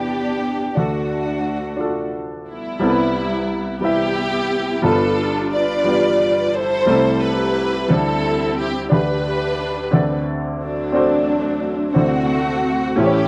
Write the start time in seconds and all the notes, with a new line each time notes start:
Already playing: E2 E3 B3 D4 E4 G4 D5
0.75 D2 D3 A3 D4 F#4 A4
1.77 D4 F4 A4
1.85 F#4
2.49 G3 B3 E4
2.79 C2 C3 G3 B3 E4
2.84 A4
2.90 B4
3.81 G3 E4 G4 B4 E5
3.86 B3 E4
4.82 G1 G2 G3 B3 D4 F4 A4
4.87 D4 F4
4.92 B4
5.54 F4 B4 D5
5.84 G3 B3 D4 F4
5.89 G4
6.55 E4 A4 C5
6.86 C2 C3 G3 A3 C4 D#4 A4
6.96 E4
7.22 E4 G4 B4
7.88 D2 D3 G3 C4 D4 E4 A4
7.92 C4 E4 A4
8.58 G4
8.89 D2 D3 D4 G4 B4
8.94 D4 G4
9.91 D2 D3 C4 D4 A4 D5 F#5
10.62 F#3 A3 D4
10.92 C4 D4 F#4 A4
10.97 C5
11.94 D2 D3 A3 C4 D4 E4 F#4 A4 C5
12.02 F#4
12.96 A1 A2 A3 C#4 E4 G4 C5
13.06 C#5